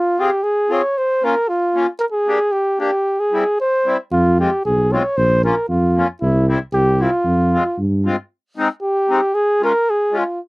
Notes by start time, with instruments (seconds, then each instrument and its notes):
Already playing: flugelhorn F4
0.18 accordion C4 F4 G#4, flugelhorn G4
0.43 flugelhorn G#4
0.69 accordion C4 F4 G#4, flugelhorn C#5
0.97 flugelhorn C5
1.23 accordion A#3 C#4 F4, flugelhorn A#4
1.49 flugelhorn F4
1.75 accordion A#3 C#4 F4
1.99 flugelhorn A#4
2.12 flugelhorn G#4
2.26 accordion A#3 D4 G4
2.52 flugelhorn G4
2.79 accordion A#3 D4 G4, flugelhorn G4
3.20 flugelhorn G#4
3.32 accordion G3 C4 E4
3.60 flugelhorn C5
3.85 accordion G3 C4 E4
4.12 tuba F2, flugelhorn F4
4.39 accordion G#3 C4 F4, flugelhorn G4
4.65 tuba B1, flugelhorn G#4
4.92 accordion G#3 C4 F4, flugelhorn C#5
5.16 tuba A#1, flugelhorn C5
5.44 accordion A#3 C#4 F4, flugelhorn A#4
5.69 tuba F2, flugelhorn F4
5.96 accordion A#3 C#4 F4
6.21 tuba C2, flugelhorn E4
6.47 accordion G3 C4 E4
6.73 tuba C2, flugelhorn G4
6.99 accordion G3 C4 E4, flugelhorn F4
7.24 tuba F2
7.53 accordion G#3 C4 F4
7.78 tuba G2
8.05 accordion G#3 C4 F4
8.57 accordion G#3 C4 D#4
8.82 flugelhorn G4
9.09 accordion G#3 C4 D#4
9.34 flugelhorn G#4
9.61 accordion G#3 C#4 F4, flugelhorn A#4
9.90 flugelhorn G#4
10.12 accordion G#3 C#4 F4
10.18 flugelhorn F4